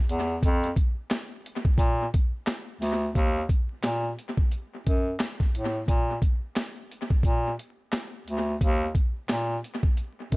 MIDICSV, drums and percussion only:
0, 0, Header, 1, 2, 480
1, 0, Start_track
1, 0, Tempo, 681818
1, 300, Time_signature, 4, 2, 24, 8
1, 7297, End_track
2, 0, Start_track
2, 0, Title_t, "Drums"
2, 66, Note_on_c, 9, 42, 80
2, 136, Note_off_c, 9, 42, 0
2, 300, Note_on_c, 9, 36, 117
2, 303, Note_on_c, 9, 42, 107
2, 371, Note_off_c, 9, 36, 0
2, 374, Note_off_c, 9, 42, 0
2, 449, Note_on_c, 9, 42, 64
2, 519, Note_off_c, 9, 42, 0
2, 538, Note_on_c, 9, 36, 100
2, 542, Note_on_c, 9, 42, 76
2, 608, Note_off_c, 9, 36, 0
2, 612, Note_off_c, 9, 42, 0
2, 778, Note_on_c, 9, 39, 98
2, 778, Note_on_c, 9, 42, 87
2, 782, Note_on_c, 9, 38, 121
2, 849, Note_off_c, 9, 39, 0
2, 849, Note_off_c, 9, 42, 0
2, 852, Note_off_c, 9, 38, 0
2, 1028, Note_on_c, 9, 42, 79
2, 1098, Note_off_c, 9, 42, 0
2, 1160, Note_on_c, 9, 36, 106
2, 1231, Note_off_c, 9, 36, 0
2, 1251, Note_on_c, 9, 36, 100
2, 1260, Note_on_c, 9, 42, 88
2, 1321, Note_off_c, 9, 36, 0
2, 1330, Note_off_c, 9, 42, 0
2, 1505, Note_on_c, 9, 42, 82
2, 1507, Note_on_c, 9, 36, 99
2, 1576, Note_off_c, 9, 42, 0
2, 1577, Note_off_c, 9, 36, 0
2, 1738, Note_on_c, 9, 39, 97
2, 1741, Note_on_c, 9, 38, 121
2, 1741, Note_on_c, 9, 42, 91
2, 1808, Note_off_c, 9, 39, 0
2, 1811, Note_off_c, 9, 38, 0
2, 1812, Note_off_c, 9, 42, 0
2, 1983, Note_on_c, 9, 38, 35
2, 1986, Note_on_c, 9, 46, 60
2, 2053, Note_off_c, 9, 38, 0
2, 2056, Note_off_c, 9, 46, 0
2, 2220, Note_on_c, 9, 36, 121
2, 2223, Note_on_c, 9, 42, 106
2, 2290, Note_off_c, 9, 36, 0
2, 2293, Note_off_c, 9, 42, 0
2, 2458, Note_on_c, 9, 36, 97
2, 2462, Note_on_c, 9, 42, 74
2, 2529, Note_off_c, 9, 36, 0
2, 2532, Note_off_c, 9, 42, 0
2, 2698, Note_on_c, 9, 39, 92
2, 2698, Note_on_c, 9, 42, 81
2, 2701, Note_on_c, 9, 38, 116
2, 2768, Note_off_c, 9, 39, 0
2, 2768, Note_off_c, 9, 42, 0
2, 2772, Note_off_c, 9, 38, 0
2, 2947, Note_on_c, 9, 42, 74
2, 3018, Note_off_c, 9, 42, 0
2, 3080, Note_on_c, 9, 36, 95
2, 3150, Note_off_c, 9, 36, 0
2, 3179, Note_on_c, 9, 42, 85
2, 3250, Note_off_c, 9, 42, 0
2, 3425, Note_on_c, 9, 42, 80
2, 3427, Note_on_c, 9, 36, 94
2, 3495, Note_off_c, 9, 42, 0
2, 3497, Note_off_c, 9, 36, 0
2, 3658, Note_on_c, 9, 39, 94
2, 3661, Note_on_c, 9, 38, 118
2, 3661, Note_on_c, 9, 42, 89
2, 3728, Note_off_c, 9, 39, 0
2, 3731, Note_off_c, 9, 38, 0
2, 3732, Note_off_c, 9, 42, 0
2, 3802, Note_on_c, 9, 36, 86
2, 3807, Note_on_c, 9, 38, 33
2, 3872, Note_off_c, 9, 36, 0
2, 3878, Note_off_c, 9, 38, 0
2, 3906, Note_on_c, 9, 42, 76
2, 3976, Note_off_c, 9, 42, 0
2, 4140, Note_on_c, 9, 36, 116
2, 4143, Note_on_c, 9, 42, 105
2, 4211, Note_off_c, 9, 36, 0
2, 4214, Note_off_c, 9, 42, 0
2, 4378, Note_on_c, 9, 36, 98
2, 4382, Note_on_c, 9, 42, 72
2, 4449, Note_off_c, 9, 36, 0
2, 4452, Note_off_c, 9, 42, 0
2, 4618, Note_on_c, 9, 39, 92
2, 4618, Note_on_c, 9, 42, 85
2, 4622, Note_on_c, 9, 38, 113
2, 4689, Note_off_c, 9, 39, 0
2, 4689, Note_off_c, 9, 42, 0
2, 4692, Note_off_c, 9, 38, 0
2, 4868, Note_on_c, 9, 42, 77
2, 4938, Note_off_c, 9, 42, 0
2, 5001, Note_on_c, 9, 36, 100
2, 5071, Note_off_c, 9, 36, 0
2, 5091, Note_on_c, 9, 36, 94
2, 5100, Note_on_c, 9, 42, 88
2, 5162, Note_off_c, 9, 36, 0
2, 5170, Note_off_c, 9, 42, 0
2, 5345, Note_on_c, 9, 42, 76
2, 5416, Note_off_c, 9, 42, 0
2, 5578, Note_on_c, 9, 39, 94
2, 5582, Note_on_c, 9, 38, 116
2, 5582, Note_on_c, 9, 42, 91
2, 5649, Note_off_c, 9, 39, 0
2, 5652, Note_off_c, 9, 38, 0
2, 5652, Note_off_c, 9, 42, 0
2, 5827, Note_on_c, 9, 42, 79
2, 5897, Note_off_c, 9, 42, 0
2, 6061, Note_on_c, 9, 36, 119
2, 6064, Note_on_c, 9, 42, 103
2, 6131, Note_off_c, 9, 36, 0
2, 6134, Note_off_c, 9, 42, 0
2, 6299, Note_on_c, 9, 36, 96
2, 6302, Note_on_c, 9, 42, 72
2, 6369, Note_off_c, 9, 36, 0
2, 6373, Note_off_c, 9, 42, 0
2, 6539, Note_on_c, 9, 39, 91
2, 6539, Note_on_c, 9, 42, 86
2, 6542, Note_on_c, 9, 38, 113
2, 6609, Note_off_c, 9, 42, 0
2, 6610, Note_off_c, 9, 39, 0
2, 6613, Note_off_c, 9, 38, 0
2, 6789, Note_on_c, 9, 42, 77
2, 6859, Note_off_c, 9, 42, 0
2, 6921, Note_on_c, 9, 36, 97
2, 6991, Note_off_c, 9, 36, 0
2, 7020, Note_on_c, 9, 42, 86
2, 7090, Note_off_c, 9, 42, 0
2, 7265, Note_on_c, 9, 42, 77
2, 7267, Note_on_c, 9, 36, 94
2, 7297, Note_off_c, 9, 36, 0
2, 7297, Note_off_c, 9, 42, 0
2, 7297, End_track
0, 0, End_of_file